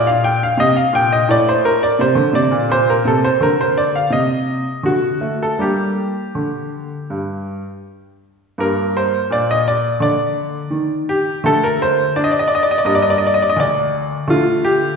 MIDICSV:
0, 0, Header, 1, 2, 480
1, 0, Start_track
1, 0, Key_signature, -2, "minor"
1, 0, Tempo, 702576
1, 1839, Time_signature, 4, 2, 24, 8
1, 2800, Tempo, 745342
1, 5680, Tempo, 711744
1, 9992, End_track
2, 0, Start_track
2, 0, Title_t, "Grand piano"
2, 0, Program_c, 0, 0
2, 0, Note_on_c, 0, 46, 61
2, 48, Note_on_c, 0, 77, 79
2, 163, Note_off_c, 0, 77, 0
2, 166, Note_on_c, 0, 79, 72
2, 261, Note_off_c, 0, 46, 0
2, 281, Note_off_c, 0, 79, 0
2, 295, Note_on_c, 0, 77, 85
2, 391, Note_on_c, 0, 48, 57
2, 405, Note_off_c, 0, 77, 0
2, 409, Note_on_c, 0, 75, 93
2, 521, Note_on_c, 0, 77, 67
2, 522, Note_off_c, 0, 75, 0
2, 565, Note_off_c, 0, 48, 0
2, 635, Note_on_c, 0, 46, 56
2, 638, Note_off_c, 0, 77, 0
2, 650, Note_on_c, 0, 79, 85
2, 762, Note_off_c, 0, 79, 0
2, 769, Note_on_c, 0, 75, 77
2, 808, Note_off_c, 0, 46, 0
2, 880, Note_on_c, 0, 45, 59
2, 882, Note_off_c, 0, 75, 0
2, 893, Note_on_c, 0, 74, 88
2, 1005, Note_off_c, 0, 74, 0
2, 1016, Note_on_c, 0, 72, 75
2, 1127, Note_off_c, 0, 72, 0
2, 1128, Note_on_c, 0, 70, 81
2, 1225, Note_off_c, 0, 45, 0
2, 1243, Note_off_c, 0, 70, 0
2, 1250, Note_on_c, 0, 74, 74
2, 1360, Note_on_c, 0, 48, 57
2, 1364, Note_off_c, 0, 74, 0
2, 1373, Note_on_c, 0, 72, 74
2, 1471, Note_on_c, 0, 50, 56
2, 1473, Note_off_c, 0, 48, 0
2, 1588, Note_off_c, 0, 50, 0
2, 1592, Note_on_c, 0, 48, 55
2, 1605, Note_off_c, 0, 72, 0
2, 1606, Note_on_c, 0, 74, 79
2, 1709, Note_off_c, 0, 48, 0
2, 1716, Note_on_c, 0, 46, 53
2, 1832, Note_off_c, 0, 46, 0
2, 1842, Note_on_c, 0, 46, 57
2, 1843, Note_off_c, 0, 74, 0
2, 1855, Note_on_c, 0, 72, 92
2, 1968, Note_off_c, 0, 72, 0
2, 1980, Note_on_c, 0, 70, 61
2, 2015, Note_off_c, 0, 46, 0
2, 2084, Note_on_c, 0, 48, 52
2, 2090, Note_off_c, 0, 70, 0
2, 2100, Note_on_c, 0, 69, 70
2, 2210, Note_off_c, 0, 69, 0
2, 2217, Note_on_c, 0, 72, 72
2, 2255, Note_off_c, 0, 48, 0
2, 2327, Note_on_c, 0, 50, 51
2, 2328, Note_off_c, 0, 72, 0
2, 2342, Note_on_c, 0, 70, 75
2, 2449, Note_off_c, 0, 70, 0
2, 2464, Note_on_c, 0, 72, 69
2, 2571, Note_off_c, 0, 72, 0
2, 2579, Note_on_c, 0, 74, 70
2, 2670, Note_off_c, 0, 50, 0
2, 2689, Note_off_c, 0, 74, 0
2, 2702, Note_on_c, 0, 77, 74
2, 2803, Note_on_c, 0, 48, 52
2, 2812, Note_off_c, 0, 77, 0
2, 2818, Note_on_c, 0, 75, 72
2, 3142, Note_off_c, 0, 48, 0
2, 3274, Note_on_c, 0, 50, 46
2, 3281, Note_off_c, 0, 75, 0
2, 3289, Note_on_c, 0, 66, 63
2, 3447, Note_off_c, 0, 50, 0
2, 3516, Note_on_c, 0, 57, 44
2, 3590, Note_off_c, 0, 66, 0
2, 3654, Note_on_c, 0, 69, 62
2, 3692, Note_off_c, 0, 57, 0
2, 3761, Note_on_c, 0, 55, 41
2, 3762, Note_on_c, 0, 58, 32
2, 3764, Note_on_c, 0, 62, 33
2, 3768, Note_off_c, 0, 69, 0
2, 3776, Note_on_c, 0, 67, 59
2, 4103, Note_off_c, 0, 55, 0
2, 4153, Note_off_c, 0, 58, 0
2, 4153, Note_off_c, 0, 62, 0
2, 4250, Note_on_c, 0, 50, 40
2, 4585, Note_off_c, 0, 50, 0
2, 4734, Note_on_c, 0, 43, 41
2, 5064, Note_off_c, 0, 43, 0
2, 5210, Note_off_c, 0, 67, 0
2, 5687, Note_on_c, 0, 43, 54
2, 5689, Note_on_c, 0, 58, 39
2, 5702, Note_on_c, 0, 70, 75
2, 5937, Note_off_c, 0, 70, 0
2, 5947, Note_on_c, 0, 72, 72
2, 6075, Note_off_c, 0, 43, 0
2, 6145, Note_off_c, 0, 72, 0
2, 6174, Note_on_c, 0, 46, 49
2, 6188, Note_on_c, 0, 74, 80
2, 6300, Note_off_c, 0, 74, 0
2, 6312, Note_on_c, 0, 75, 77
2, 6422, Note_off_c, 0, 75, 0
2, 6426, Note_on_c, 0, 74, 77
2, 6559, Note_off_c, 0, 46, 0
2, 6625, Note_off_c, 0, 74, 0
2, 6646, Note_on_c, 0, 50, 52
2, 6659, Note_on_c, 0, 74, 79
2, 7033, Note_off_c, 0, 50, 0
2, 7119, Note_on_c, 0, 51, 52
2, 7269, Note_off_c, 0, 74, 0
2, 7380, Note_on_c, 0, 67, 72
2, 7508, Note_off_c, 0, 51, 0
2, 7581, Note_off_c, 0, 67, 0
2, 7589, Note_off_c, 0, 58, 0
2, 7614, Note_on_c, 0, 50, 55
2, 7615, Note_on_c, 0, 57, 37
2, 7627, Note_on_c, 0, 69, 88
2, 7740, Note_off_c, 0, 69, 0
2, 7748, Note_on_c, 0, 70, 72
2, 7861, Note_off_c, 0, 70, 0
2, 7872, Note_on_c, 0, 72, 76
2, 7997, Note_off_c, 0, 50, 0
2, 8101, Note_on_c, 0, 74, 70
2, 8102, Note_off_c, 0, 72, 0
2, 8102, Note_on_c, 0, 62, 54
2, 8151, Note_off_c, 0, 74, 0
2, 8154, Note_on_c, 0, 75, 72
2, 8204, Note_off_c, 0, 75, 0
2, 8205, Note_on_c, 0, 74, 69
2, 8257, Note_off_c, 0, 74, 0
2, 8258, Note_on_c, 0, 75, 74
2, 8310, Note_off_c, 0, 75, 0
2, 8314, Note_on_c, 0, 74, 73
2, 8363, Note_on_c, 0, 75, 75
2, 8365, Note_off_c, 0, 74, 0
2, 8417, Note_off_c, 0, 75, 0
2, 8418, Note_on_c, 0, 74, 75
2, 8471, Note_off_c, 0, 74, 0
2, 8472, Note_on_c, 0, 75, 73
2, 8482, Note_off_c, 0, 62, 0
2, 8520, Note_on_c, 0, 74, 71
2, 8526, Note_off_c, 0, 75, 0
2, 8547, Note_off_c, 0, 57, 0
2, 8564, Note_on_c, 0, 43, 58
2, 8565, Note_on_c, 0, 58, 42
2, 8572, Note_on_c, 0, 75, 74
2, 8577, Note_off_c, 0, 74, 0
2, 8630, Note_off_c, 0, 75, 0
2, 8633, Note_on_c, 0, 74, 75
2, 8683, Note_on_c, 0, 75, 72
2, 8687, Note_off_c, 0, 74, 0
2, 8736, Note_on_c, 0, 74, 76
2, 8739, Note_off_c, 0, 75, 0
2, 8789, Note_on_c, 0, 75, 67
2, 8792, Note_off_c, 0, 74, 0
2, 8845, Note_off_c, 0, 75, 0
2, 8847, Note_on_c, 0, 74, 70
2, 8897, Note_on_c, 0, 75, 71
2, 8901, Note_off_c, 0, 74, 0
2, 8949, Note_off_c, 0, 43, 0
2, 8953, Note_off_c, 0, 75, 0
2, 8953, Note_on_c, 0, 74, 70
2, 9001, Note_on_c, 0, 75, 73
2, 9008, Note_off_c, 0, 74, 0
2, 9049, Note_on_c, 0, 38, 54
2, 9059, Note_off_c, 0, 75, 0
2, 9071, Note_on_c, 0, 74, 82
2, 9431, Note_off_c, 0, 38, 0
2, 9496, Note_off_c, 0, 58, 0
2, 9527, Note_on_c, 0, 57, 38
2, 9528, Note_on_c, 0, 50, 55
2, 9531, Note_off_c, 0, 74, 0
2, 9545, Note_on_c, 0, 65, 83
2, 9773, Note_off_c, 0, 65, 0
2, 9776, Note_on_c, 0, 67, 80
2, 9908, Note_off_c, 0, 50, 0
2, 9974, Note_off_c, 0, 67, 0
2, 9992, Note_off_c, 0, 57, 0
2, 9992, End_track
0, 0, End_of_file